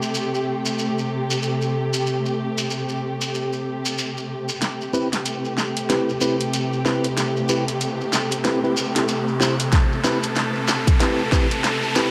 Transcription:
Already playing: C3 A3 G4
0.02 shekere
0.14 shekere
0.35 shekere
0.66 shekere
0.79 shekere
0.98 shekere
1.30 shekere
1.42 shekere
1.62 shekere
1.93 shekere
2.06 shekere
2.26 shekere
2.58 shekere
2.71 shekere
2.89 shekere
3.21 shekere
3.34 shekere
3.53 shekere
3.85 shekere
3.98 shekere
4.17 shekere
4.49 shekere
4.61 C3 A3 G4, snare, closed hi-hat, riser, shekere
4.81 shekere
4.93 C4 E4 G4 B4, shekere
5.13 snare, closed hi-hat, shekere
5.25 closed hi-hat, shekere
5.45 shekere
5.57 snare, shekere
5.77 closed hi-hat, shekere
5.90 C4 E4 G4 B4, snare, closed hi-hat, shekere
6.09 shekere
6.21 C4 E4 G4 B4, shekere
6.40 closed hi-hat, shekere
6.53 closed hi-hat, shekere
6.73 shekere
6.85 C4 E4 G4 B4, snare, shekere
7.04 closed hi-hat, shekere
7.17 snare, closed hi-hat, shekere
7.37 shekere
7.49 C4 E4 G4 B4, shekere
7.68 closed hi-hat, shekere
7.81 closed hi-hat, shekere
8.01 shekere
8.13 snare, shekere
8.31 closed hi-hat, shekere
8.44 C4 E4 G4 B4, snare, closed hi-hat, shekere
8.64 C4 E4 G4 B4, shekere
8.77 shekere
8.96 C4 E4 G4 A4, snare, closed hi-hat, shekere
9.08 closed hi-hat, shekere
9.28 shekere
9.40 C4 E4 G4 C5, snare, shekere
9.60 closed hi-hat, shekere
9.72 A4, kick, snare, closed hi-hat, shekere
9.92 shekere
10.04 C4 E4 G4 B4, snare, shekere
10.23 closed hi-hat, shekere
10.35 snare, closed hi-hat, shekere
10.55 shekere
10.68 snare, shekere
10.87 kick, closed hi-hat, shekere
11.00 C4 E4 G4 B4, snare, closed hi-hat, shekere
11.19 shekere
11.32 C4 E4 G4 B4, kick, snare, shekere
11.51 closed hi-hat, shekere
11.64 snare, closed hi-hat, shekere
11.83 shekere
11.95 C4 E4 G4 B4, snare, shekere

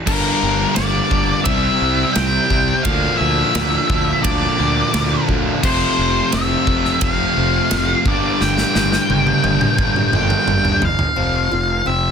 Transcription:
0.06 G1 G2 D3 G3 A#3 D4 A#4, kick, crash
0.43 G1
0.75 G1 D5, snare, ride bell
1.11 G1 G2 D3 G3 A#3 D4, kick
1.44 C2 C3 G3 C4 E4 E5, kick, ride bell
1.82 C2
2.13 C2 G5, snare, ride bell
2.50 C2 C3 G3 C4 E4, kick
2.83 D2 A#2 D3 F3 F5, kick, ride bell
2.87 A#3 D4
3.17 D2 E5
3.55 D2, snare, ride bell
3.90 D2 D3 F3 A#3 D4, kick
4.23 D2 D5, kick, ride bell
4.58 D2 D3 F3 A#3 D4
4.93 D2 D3 F3 A#3 D4, snare, ride bell
5.29 D2, kick
5.62 F1 F2 C3 F3 A3 C4 C5, kick, crash
5.99 F1
6.32 F1 E5, snare, ride bell
6.67 F1 F2 C3 F3 A3 C4, kick
6.85 snare
7.01 F1 F5, kick, ride bell
7.36 F1 F2 C3 F3 A3 C4
7.70 F1 F2 C3 F3 A3 C4, snare, ride bell
8.04 G1 G2 D3 G3 A#3 D4 D5, kick
8.41 G1 G5, snare
8.58 snare
8.75 G1, snare
8.92 snare
9.09 G1 G2 D3 G3 A#3 D4, high tom
9.27 high tom
9.44 G1, high tom
9.61 mid tom
9.77 G1 G2 D3 G3 A#3 D4, kick, mid tom
9.96 mid tom
10.11 G1 G2 D3 G3 A#3 D4 G5, mid tom
10.30 mid tom
10.48 G1, mid tom
10.65 floor tom
10.82 G1 F5, floor tom
10.99 floor tom
11.16 F1 F2 C3 F3
11.51 F1 F2 C3 F3
11.86 F1 F2 C3 C4 E5

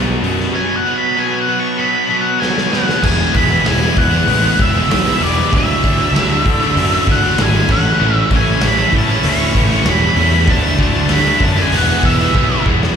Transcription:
Already playing: B1 B2 F#3 B3
0.23 F#2 B2 F#3 B3, open hi-hat
0.40 snare
0.54 B2 F#3 B3 G#5
0.76 F#5
0.85 B2 F#3 B3
0.98 B5
1.17 B2 F#3 B3 G#5
1.41 F#5
1.47 B2 F#3 B3
1.60 C#6
1.77 B2 F#3 B3 B5
2.10 B2 F#3 B3
2.21 F#5
2.40 B2 F#3 B3 G#5, snare
2.58 snare
2.72 B2 F#3 B3 F#5, snare
2.89 snare
3.02 E1 E3 G#3 B3 E4 G#5, kick, crash
3.33 E1 E3 G#3 B3 E4 B5, kick, open hi-hat
3.48 G#3 B3 E4
3.64 E1 E3 G#3 B3 E4, snare, open hi-hat
3.68 G#5
3.81 G#3 B3 E4
3.96 E2 E3 G#3 B3 E4 F#5, muted overdriven electric guitar stroke, kick, open hi-hat
4.11 G#3 B3 E4
4.26 A1 E3 G#3 B3 E4, open hi-hat
4.42 G#3 B3 E4
4.56 E1 E3 G#3 B3 E4, kick, open hi-hat
4.62 E5
4.72 G#3 B3 E4
4.89 B1 E3 G#3 B3 E4, snare, open hi-hat
5.04 G#3 B3 E4
5.20 E1 E3 G#3 B3 E4 D5, open hi-hat
5.37 G#3 B3 E4
5.51 D2 D3 A3 D4 E4, kick, open hi-hat
5.56 E5
5.82 D2 D3 A3 D4 E4, kick, open hi-hat
5.98 A3 D4 E4
6.13 D2 D3 A3 D4 E4, snare, open hi-hat
6.29 A3 D4 E4
6.44 D3 A3 D4 E4, muted overdriven electric guitar stroke, kick, open hi-hat
6.60 A3 D4 E4
6.75 F#2 D3 A3 D4 E4, open hi-hat
6.91 A3 D4 E4
7.07 D2 D3 A3 D4 E4, kick, open hi-hat
7.12 F#5
7.22 A3 D4 E4, snare
7.37 G#1 D3 A3 D4 E4, snare, open hi-hat
7.43 G#5
7.53 A3 D4 E4
7.68 A1 A2 E3 A3 C#4 E4, kick, crash
7.72 F#5
7.85 A3 C#4 E4
8.00 A1 A2 E3 A3 C#4 E4
8.15 E5
8.30 A1 E3 A3 C#4 E4, kick, open hi-hat
8.36 G#5
8.46 C#4 E4
8.50 A3
8.61 A1 A2 E3 A3 C#4 E4, snare, open hi-hat
8.67 B5
8.77 A3 C#4 E4
8.93 A2 E3 A3 C#4, muted overdriven electric guitar stroke, kick, open hi-hat
8.97 E4 A5
9.07 A3 C#4 E4
9.23 D2 A2 E3 A3 C#4, open hi-hat
9.28 E4 C#6
9.39 A3 C#4 E4
9.55 A1 E3 A3 C#4 E4, kick, open hi-hat
9.71 A3 C#4 E4, snare
9.85 E1 A2 E3 A3 C#4 E4, snare, open hi-hat
9.90 B5
10.01 A3 C#4 E4
10.16 E2 A2 E3 A3 C#4 E4, open hi-hat
10.33 A3 C#4 E4
10.47 D2 D3 A3 D4 E4 A5, kick, open hi-hat
10.78 D2 D3 A3 D4 E4, kick, open hi-hat
10.83 A5
10.93 A3 D4 E4
11.09 D2 D3 A3 D4 E4, snare, open hi-hat
11.13 B5
11.25 A3 D4 E4
11.39 F#2 D3 A3 D4 E4, muted overdriven electric guitar stroke, kick, open hi-hat
11.44 A5
11.56 A3 D4 E4
11.61 G#5
11.72 E1 E3 G#3 B3 E4, open hi-hat
11.77 F#5
11.88 G#3 B3 E4
12.03 E1 E3 G#3 B3 E4 E5, kick, open hi-hat
12.19 G#3 B3 E4, snare
12.31 B1 E3 B3, kick
12.36 E3 G#3 B3 E4
12.51 G#3 B3 E4
12.66 E1 E3 G#3 B3 E4, kick
12.79 G#3 B3 E4, snare

